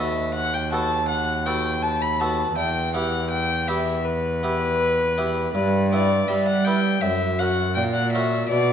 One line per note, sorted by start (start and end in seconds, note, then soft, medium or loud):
0.00 2.53 D#2 soft
0.00 0.51 B3 soft
0.00 0.51 F#4 soft
0.00 0.51 A4 soft
0.00 0.33 E5 medium
0.34 0.55 F#5 medium
0.54 0.72 G5 medium
0.72 0.99 B3 soft
0.72 0.99 F#4 soft
0.72 0.99 A4 soft
0.72 1.08 A5 medium
1.08 1.47 F#5 medium
1.46 1.99 B3 soft
1.46 2.00 F#4 soft
1.46 2.00 A4 soft
1.46 1.84 G5 medium
1.83 2.03 A5 medium
2.02 2.21 B5 medium
2.20 2.47 B3 soft
2.20 2.48 F#4 soft
2.20 2.48 A4 soft
2.20 2.57 A5 medium
2.56 5.51 E2 medium
2.56 5.51 E2 soft
2.56 2.94 G5 medium
2.94 3.48 B3 soft
2.94 3.48 E4 soft
2.94 3.48 G4 soft
2.94 3.30 F#5 medium
3.30 3.69 G5 medium
3.68 3.95 B3 soft
3.68 3.95 E4 soft
3.68 3.96 G4 soft
3.68 4.06 E5 medium
4.05 5.52 B4 medium
4.43 4.97 B3 soft
4.43 4.98 E4 soft
4.43 4.98 G4 soft
5.18 5.45 B3 soft
5.18 5.45 E4 soft
5.18 5.46 G4 soft
5.53 6.25 G2 soft
5.53 6.26 G2 medium
5.53 5.91 B4 medium
5.92 6.46 B3 soft
5.92 6.46 E4 soft
5.92 6.46 B4 soft
5.92 6.29 D5 medium
6.28 6.99 G3 soft
6.28 7.02 G3 medium
6.28 6.47 E5 medium
6.48 6.66 F#5 medium
6.65 6.93 B3 soft
6.65 6.94 E4 soft
6.65 6.94 B4 soft
6.65 7.03 G5 medium
7.01 7.73 F#2 soft
7.01 7.79 F#2 soft
7.01 7.40 E5 medium
7.39 7.93 C#4 soft
7.39 7.94 F#4 soft
7.39 7.94 A#4 soft
7.39 7.74 F#5 medium
7.75 8.50 A#2 medium
7.75 8.47 A#2 soft
7.75 7.83 G5 medium
7.94 8.12 F#5 medium
8.13 8.41 C#4 soft
8.13 8.42 F#4 soft
8.13 8.42 A#4 soft
8.13 8.49 E5 medium
8.49 8.73 B2 medium
8.49 8.73 B2 soft
8.49 8.73 D5 medium